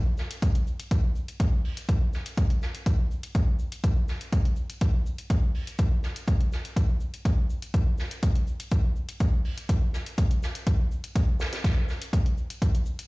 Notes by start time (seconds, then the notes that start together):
0.17 snare, shaker
0.31 closed hi-hat
0.42 kick, closed hi-hat, shaker
0.55 closed hi-hat
0.67 shaker
0.80 closed hi-hat
0.91 kick, closed hi-hat, shaker
1.15 shaker
1.28 closed hi-hat
1.40 kick, closed hi-hat, shaker
1.65 open hi-hat
1.77 closed hi-hat
1.88 kick, closed hi-hat, shaker
2.13 snare, shaker
2.26 closed hi-hat
2.37 kick, closed hi-hat, shaker
2.50 closed hi-hat
2.62 snare, shaker
2.75 closed hi-hat
2.86 kick, closed hi-hat, shaker
3.11 shaker
3.23 closed hi-hat
3.35 kick, closed hi-hat, shaker
3.59 shaker
3.72 closed hi-hat
3.83 kick, closed hi-hat, shaker
4.08 snare, shaker
4.21 closed hi-hat
4.32 kick, closed hi-hat, shaker
4.45 closed hi-hat
4.56 shaker
4.70 closed hi-hat
4.81 kick, closed hi-hat, shaker
5.06 shaker
5.18 closed hi-hat
5.30 kick, closed hi-hat, shaker
5.55 open hi-hat
5.67 closed hi-hat
5.78 kick, closed hi-hat, shaker
6.03 snare, shaker
6.16 closed hi-hat
6.27 kick, closed hi-hat, shaker
6.41 closed hi-hat
6.52 snare, shaker
6.65 closed hi-hat
6.76 kick, closed hi-hat, shaker
7.00 shaker
7.14 closed hi-hat
7.25 kick, closed hi-hat, shaker
7.50 shaker
7.62 closed hi-hat
7.74 kick, closed hi-hat, shaker
7.98 snare, shaker
8.11 closed hi-hat
8.23 kick, closed hi-hat, shaker
8.35 closed hi-hat
8.47 shaker
8.60 closed hi-hat
8.71 kick, closed hi-hat, shaker
8.96 shaker
9.09 closed hi-hat
9.20 kick, closed hi-hat, shaker
9.45 open hi-hat
9.57 closed hi-hat
9.69 kick, closed hi-hat, shaker
9.93 snare, shaker
10.06 closed hi-hat
10.18 kick, closed hi-hat, shaker
10.31 closed hi-hat
10.43 snare, shaker
10.55 closed hi-hat
10.67 kick, closed hi-hat, shaker
10.91 shaker
11.04 closed hi-hat
11.15 kick, closed hi-hat, shaker
11.40 snare, shaker
11.52 snare, closed hi-hat, shaker
11.64 kick, snare, closed hi-hat, shaker
11.88 snare, shaker
12.02 closed hi-hat
12.13 kick, closed hi-hat, shaker
12.26 closed hi-hat
12.37 shaker
12.50 closed hi-hat
12.62 kick, closed hi-hat, shaker
12.75 closed hi-hat
12.86 shaker
12.99 closed hi-hat